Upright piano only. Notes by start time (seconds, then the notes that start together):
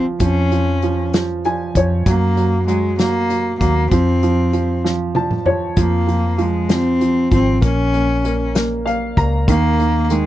Already playing: F3
0.21 F3
0.52 F3
0.83 F3
1.14 F3
1.45 F3 G#5
1.77 F3 C#5
2.07 F#3
2.37 F#3
2.68 F#3
3.00 F#3
3.30 F#3
3.62 F#3
3.92 F3
4.23 F3
4.53 F3
4.84 F3
5.16 F3 A5
5.46 F3 C#5
5.77 F3
6.07 F3
6.38 F3
6.69 F3
7.01 F3
7.31 F3
7.61 A#3
7.94 A#3
8.25 A#3
8.55 A#3
8.86 A#3 F5
9.17 A#3 A#5
9.48 D#3
9.79 D#3
10.11 D#3